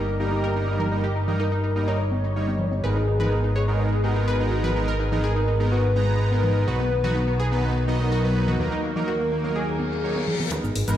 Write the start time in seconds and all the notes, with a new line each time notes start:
Already playing: G1 G3 D#4 A#4
0.08 cabasa
0.20 G3 A#3 D#4 G4 A#4
0.32 D#4, cabasa
0.44 A#4, cabasa
0.56 G3 A#3 D#4 A#4, cabasa
0.68 D#4
0.80 A#4, low conga, cabasa
0.92 G3 A#3 D#4 A#4, cabasa
1.04 G4, cabasa
1.16 D#4
1.28 G3 A#3 D#4 A#4, low conga, cabasa
1.40 D#4 A#4, cabasa
1.52 D#4, cabasa
1.64 D#4
1.76 G3 A#3 D#4 A#4, cabasa
1.88 D#4 C#5, cabasa
2.00 cabasa
2.12 high conga
2.24 cabasa
2.36 G3 A#3 D#4 C#5, cabasa
2.48 high conga, cabasa
2.59 low conga
2.72 high conga, cabasa
2.84 G#1 G#3 B3 D#4 G#4 A#4 B4
2.96 D#4, high conga, cabasa
3.08 D#4
3.20 G#3 B3 D#4 A#4 B4, low conga, cabasa
3.32 D#4, cabasa
3.44 D#4, cabasa
3.56 G#4 C#5
3.68 G#3 B3 D#4 A#4, cabasa
3.80 D#4, cabasa
3.92 cabasa
4.04 G#3 B3 D#4 F#4 A#4
4.16 D#4, cabasa
4.28 B4
4.40 G#3 B3 D#4 A#4, cabasa
4.52 D#4
4.64 B4, low conga
4.76 G#3 B3 D#4 A#4, cabasa
4.88 A#4
5.00 D#4
5.12 G#3 B3 D#4 A#4, low conga, cabasa
5.24 G#4 A#4
5.36 D#4, cabasa
5.48 D#4
5.60 G#3 B3 D#4 A#4, cabasa
5.72 F#4 B4, cabasa
5.84 cabasa
5.95 G#3 B3 D#4 A#5, high conga
6.08 cabasa
6.20 cabasa
6.32 G#3 B3 D#4 A#4, high conga, cabasa
6.44 low conga
6.56 cabasa
6.68 B1 D#3 F#3 B3 D#4 F#4 B4, cabasa
6.80 B3, high conga, cabasa
6.92 B3
7.04 F#3 B3 D#4 F#4 B4, low conga, cabasa
7.16 B3, cabasa
7.28 B3, cabasa
7.40 G#4 B4
7.52 F#3 B3 D#4 B4, cabasa
7.64 B3, cabasa
7.76 cabasa
7.88 F#3 B3 D#4 A#4 D#5
8.00 B3, cabasa
8.12 F#4, cabasa
8.24 F#3 B3 D#4 B4, cabasa
8.36 B3
8.48 F#4, low conga, cabasa
8.60 D#2 D#3 F#3 A#3 D#4 A#4, cabasa
8.72 D#4, cabasa
8.84 A#3
8.96 F#3 A#3 D#4 A#4, low conga, cabasa
9.08 F#4 A#4, cabasa
9.20 A#3, cabasa
9.32 A#3
9.44 F#3 A#3 D#4 A#4, cabasa
9.56 G#4, reverse cymbal, cabasa
9.68 cabasa
9.80 high conga
9.92 cabasa
10.04 F#3 A#3 D#4 C#5, cabasa
10.16 high conga, cabasa
10.28 low conga
10.40 high conga, low conga, cabasa
10.52 G#3 B3 D#4 G#4 A#4 B4, kick, closed hi-hat, cabasa
10.64 G#1 D#4, high conga, cabasa
10.76 G#1 D#4, open hi-hat
10.88 G#1 G#3 B3 D#4 A#4 B4, closed hi-hat, low conga, cabasa